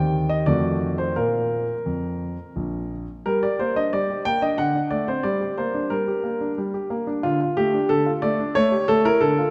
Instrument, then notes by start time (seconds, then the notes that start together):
grand piano
Already playing: D#2 D#3 C4 G4 G5
0.29 D#5
0.46 F2 D#3 A3 F#4 D5
0.98 C5
1.16 A#2 A#3 F4 A#4
1.86 F2
2.56 A#1
3.26 G3 A#4
3.43 G4 D5
3.59 A#3 C5
3.76 D4 D#5
3.93 G3 D5
4.10 G4
4.25 A#3 G5
4.42 D4 D#5
4.58 D3 F#5
4.75 D4
4.91 A3 D5
5.08 C4 C5
5.23 G3 D5
5.41 G4
5.58 A#3 C5
5.74 D4
5.90 G3 A#4
6.08 G4
6.24 A#3
6.41 D4
6.58 G3
6.74 G4
6.90 A#3
7.07 D4
7.23 D3 F4
7.41 F4
7.57 A3 G4
7.74 D4
7.89 D3 A4
8.06 F4
8.22 A3 D5
8.39 D4
8.55 A3 C#5
8.72 G4
8.88 A3 A4
9.05 E4 A#4
9.21 D3 A4
9.39 F4